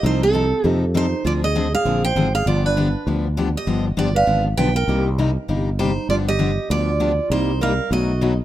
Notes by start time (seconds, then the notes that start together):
0.03 C2 C3 F3 C4 D#4 A4 C5
0.23 C4 A4
0.33 C3 F3 C4 D#4 A4
0.64 F2 C3 F3 A#3 C4 D#4 G4 A4
0.94 C3 F3 C4 D#4 A4 C5
1.25 D2 D3 F3 C4 D4 F4 G#4 D5
1.44 G#4 D#5
1.55 D3 F3 C4 D4 G#4
1.74 G#4 F5
1.85 A#1 D3 F3 C4 D4 G#4
2.05 C5 G5
2.16 G#1 D3 F3 C4 D4 G#4
2.35 G#4 F5
2.46 G1 D3 F3 B3 D4 F4 G4 D5
2.66 D4 B4
2.77 D3 F3 B3 D4 G4
3.07 D2 D3 F3 B3 D4 G4
3.37 D3 F3 B3 D4 G4
3.55 G4 D#5
3.67 G1 D3 F3 B3 D4 G4
3.97 G1 D3 F3 B3 D4 F4 G4 D5
4.15 B4 F5
4.26 G#1 D3 F3 B3 D4 G4
4.57 B1 D3 F3 B3 D4 G4 B4 G5
4.75 A#4 G5
4.88 C2 C3 G3 A#3 D#4 G4
5.18 C3 G3 A#3 D#4 G4
5.48 G1 C3 G3 A#3 D#4 G4
5.79 C3 G3 A#3 D#4 G4 C5
6.09 G1 D3 F3 B3 D4 F4 G4 D5
6.28 G4 D#5
6.39 D3 F3 B3 D4 G4
6.70 D2 D3 F3 B3 D4 F4 G4 D5
7.00 D3 F3 B3 D4 G4
7.30 C2 C3 G3 A#3 D#4 G4 C5
7.61 C3 G3 A#3 D#4 G4 A#4 F5
7.91 B1 B2 F#3 A3 D#4 F#4 D#5
8.21 B2 F#3 A3 D#4 F#4